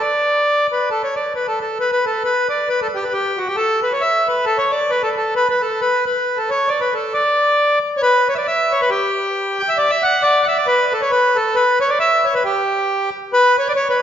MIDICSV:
0, 0, Header, 1, 2, 480
1, 0, Start_track
1, 0, Key_signature, 2, "major"
1, 0, Tempo, 443459
1, 16, Time_signature, 2, 2, 24, 8
1, 15176, End_track
2, 0, Start_track
2, 0, Title_t, "Accordion"
2, 0, Program_c, 0, 21
2, 11, Note_on_c, 0, 74, 95
2, 725, Note_off_c, 0, 74, 0
2, 780, Note_on_c, 0, 71, 66
2, 968, Note_off_c, 0, 71, 0
2, 981, Note_on_c, 0, 69, 81
2, 1107, Note_off_c, 0, 69, 0
2, 1122, Note_on_c, 0, 73, 70
2, 1246, Note_off_c, 0, 73, 0
2, 1250, Note_on_c, 0, 74, 64
2, 1443, Note_off_c, 0, 74, 0
2, 1462, Note_on_c, 0, 71, 66
2, 1588, Note_off_c, 0, 71, 0
2, 1598, Note_on_c, 0, 69, 72
2, 1725, Note_off_c, 0, 69, 0
2, 1741, Note_on_c, 0, 69, 61
2, 1929, Note_off_c, 0, 69, 0
2, 1951, Note_on_c, 0, 71, 82
2, 2065, Note_off_c, 0, 71, 0
2, 2082, Note_on_c, 0, 71, 72
2, 2221, Note_off_c, 0, 71, 0
2, 2228, Note_on_c, 0, 69, 70
2, 2414, Note_off_c, 0, 69, 0
2, 2429, Note_on_c, 0, 71, 85
2, 2681, Note_off_c, 0, 71, 0
2, 2698, Note_on_c, 0, 74, 74
2, 2910, Note_off_c, 0, 74, 0
2, 2911, Note_on_c, 0, 71, 83
2, 3035, Note_off_c, 0, 71, 0
2, 3052, Note_on_c, 0, 69, 81
2, 3112, Note_off_c, 0, 69, 0
2, 3193, Note_on_c, 0, 67, 76
2, 3286, Note_on_c, 0, 71, 68
2, 3292, Note_off_c, 0, 67, 0
2, 3385, Note_on_c, 0, 67, 83
2, 3391, Note_off_c, 0, 71, 0
2, 3655, Note_on_c, 0, 66, 68
2, 3669, Note_off_c, 0, 67, 0
2, 3755, Note_on_c, 0, 67, 68
2, 3764, Note_off_c, 0, 66, 0
2, 3855, Note_off_c, 0, 67, 0
2, 3856, Note_on_c, 0, 69, 102
2, 4117, Note_off_c, 0, 69, 0
2, 4146, Note_on_c, 0, 71, 80
2, 4249, Note_on_c, 0, 73, 68
2, 4251, Note_off_c, 0, 71, 0
2, 4342, Note_on_c, 0, 76, 90
2, 4354, Note_off_c, 0, 73, 0
2, 4629, Note_off_c, 0, 76, 0
2, 4630, Note_on_c, 0, 71, 70
2, 4819, Note_off_c, 0, 71, 0
2, 4823, Note_on_c, 0, 69, 95
2, 4955, Note_off_c, 0, 69, 0
2, 4957, Note_on_c, 0, 73, 84
2, 5100, Note_on_c, 0, 74, 81
2, 5105, Note_off_c, 0, 73, 0
2, 5305, Note_on_c, 0, 71, 84
2, 5316, Note_off_c, 0, 74, 0
2, 5436, Note_off_c, 0, 71, 0
2, 5444, Note_on_c, 0, 69, 80
2, 5575, Note_off_c, 0, 69, 0
2, 5596, Note_on_c, 0, 69, 66
2, 5784, Note_off_c, 0, 69, 0
2, 5800, Note_on_c, 0, 71, 100
2, 5930, Note_off_c, 0, 71, 0
2, 5946, Note_on_c, 0, 71, 79
2, 6075, Note_on_c, 0, 69, 77
2, 6080, Note_off_c, 0, 71, 0
2, 6285, Note_off_c, 0, 69, 0
2, 6290, Note_on_c, 0, 71, 79
2, 6544, Note_off_c, 0, 71, 0
2, 6560, Note_on_c, 0, 71, 71
2, 6900, Note_on_c, 0, 69, 70
2, 6909, Note_off_c, 0, 71, 0
2, 7037, Note_on_c, 0, 73, 82
2, 7038, Note_off_c, 0, 69, 0
2, 7233, Note_on_c, 0, 74, 87
2, 7246, Note_off_c, 0, 73, 0
2, 7363, Note_off_c, 0, 74, 0
2, 7367, Note_on_c, 0, 71, 75
2, 7511, Note_on_c, 0, 69, 64
2, 7513, Note_off_c, 0, 71, 0
2, 7723, Note_on_c, 0, 74, 88
2, 7724, Note_off_c, 0, 69, 0
2, 8431, Note_off_c, 0, 74, 0
2, 8627, Note_on_c, 0, 73, 58
2, 8678, Note_off_c, 0, 73, 0
2, 8683, Note_on_c, 0, 71, 103
2, 8963, Note_off_c, 0, 71, 0
2, 8970, Note_on_c, 0, 73, 78
2, 9033, Note_off_c, 0, 73, 0
2, 9037, Note_on_c, 0, 76, 62
2, 9058, Note_off_c, 0, 76, 0
2, 9068, Note_on_c, 0, 74, 86
2, 9167, Note_off_c, 0, 74, 0
2, 9169, Note_on_c, 0, 76, 84
2, 9435, Note_on_c, 0, 73, 84
2, 9445, Note_off_c, 0, 76, 0
2, 9538, Note_off_c, 0, 73, 0
2, 9542, Note_on_c, 0, 71, 87
2, 9633, Note_off_c, 0, 71, 0
2, 9633, Note_on_c, 0, 67, 88
2, 10387, Note_on_c, 0, 79, 87
2, 10409, Note_off_c, 0, 67, 0
2, 10485, Note_on_c, 0, 76, 97
2, 10493, Note_off_c, 0, 79, 0
2, 10581, Note_on_c, 0, 74, 96
2, 10583, Note_off_c, 0, 76, 0
2, 10712, Note_on_c, 0, 76, 99
2, 10728, Note_off_c, 0, 74, 0
2, 10854, Note_on_c, 0, 78, 100
2, 10862, Note_off_c, 0, 76, 0
2, 11062, Note_on_c, 0, 74, 109
2, 11071, Note_off_c, 0, 78, 0
2, 11294, Note_on_c, 0, 78, 76
2, 11313, Note_off_c, 0, 74, 0
2, 11336, Note_off_c, 0, 78, 0
2, 11341, Note_on_c, 0, 76, 83
2, 11445, Note_on_c, 0, 74, 78
2, 11448, Note_off_c, 0, 76, 0
2, 11551, Note_off_c, 0, 74, 0
2, 11551, Note_on_c, 0, 71, 95
2, 11827, Note_on_c, 0, 69, 85
2, 11832, Note_off_c, 0, 71, 0
2, 11921, Note_off_c, 0, 69, 0
2, 11923, Note_on_c, 0, 73, 67
2, 12025, Note_on_c, 0, 71, 87
2, 12030, Note_off_c, 0, 73, 0
2, 12294, Note_on_c, 0, 69, 82
2, 12308, Note_off_c, 0, 71, 0
2, 12503, Note_on_c, 0, 71, 89
2, 12509, Note_off_c, 0, 69, 0
2, 12759, Note_off_c, 0, 71, 0
2, 12779, Note_on_c, 0, 73, 92
2, 12874, Note_on_c, 0, 74, 72
2, 12885, Note_off_c, 0, 73, 0
2, 12973, Note_off_c, 0, 74, 0
2, 12985, Note_on_c, 0, 76, 94
2, 13255, Note_on_c, 0, 73, 69
2, 13267, Note_off_c, 0, 76, 0
2, 13363, Note_off_c, 0, 73, 0
2, 13363, Note_on_c, 0, 71, 83
2, 13457, Note_off_c, 0, 71, 0
2, 13472, Note_on_c, 0, 67, 79
2, 14177, Note_off_c, 0, 67, 0
2, 14431, Note_on_c, 0, 71, 118
2, 14681, Note_off_c, 0, 71, 0
2, 14706, Note_on_c, 0, 73, 86
2, 14806, Note_off_c, 0, 73, 0
2, 14814, Note_on_c, 0, 74, 88
2, 14856, Note_off_c, 0, 74, 0
2, 14894, Note_on_c, 0, 73, 103
2, 15024, Note_off_c, 0, 73, 0
2, 15040, Note_on_c, 0, 71, 86
2, 15176, Note_off_c, 0, 71, 0
2, 15176, End_track
0, 0, End_of_file